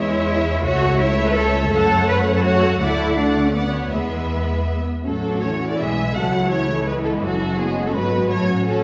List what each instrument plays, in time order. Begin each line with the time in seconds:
Already playing: double bass section E2, viola section G#3, cello section E4, violin section C#5 E5
0.65 double bass section C#2, viola section A3, cello section F#4, violin section C#5 E5
1.00 viola section A3, cello section E4, violin section C#5 E5
1.28 cello section B4
1.36 viola section A3, cello section A4, violin section C#5 E5
1.72 double bass section F#2, viola section A3, cello section A4, violin section C#5 F#5
2.08 cello section B4
2.35 cello section A4
2.44 viola section A3, cello section F#4, violin section C#5 F#5
2.80 double bass section D2, viola section A3, cello section E4, violin section D5 F#5
3.17 viola section A3, cello section D4, violin section D5 F#5
3.44 cello section C#4
3.53 cello section B3, viola section B3, violin section D5 F#5
3.73 violin section C#5
3.91 double bass section E2, cello section G#3, viola section B3, violin section B4 E5
5.04 double bass section A1, cello section A2, viola section F#3 A3, violin section C#4 F#4 A4
5.23 violin section D4
5.42 viola section E3, violin section C#4 C#5
5.69 violin section D5
5.78 double bass section B1, cello section B2, viola section G#3, violin section B3 G#4 E5
5.96 violin section G#4
6.14 double bass section C#2, cello section C#3, viola section F#3 A3, violin section A3 A4 F#5
6.32 violin section E4
6.51 viola section E3 A3, violin section E4 C#5
6.69 viola section E3
6.87 viola section E3 G#3, violin section B3 B4
7.05 violin section A4
7.23 double bass section F#1, cello section F#2, viola section F#3, violin section C#4 F#4 A4
7.59 viola section G#3 B3, violin section C#4 F#4 G#4
7.86 violin section A4
7.95 double bass section G#1, cello section G#2, viola section F#3 A3, violin section B3 B4
8.13 viola section G#3
8.30 double bass section A1, cello section A2, viola section F#3, violin section A3 F#4 C#5
8.49 violin section C#4
8.66 viola section F#3 C#4, violin section F#4 A4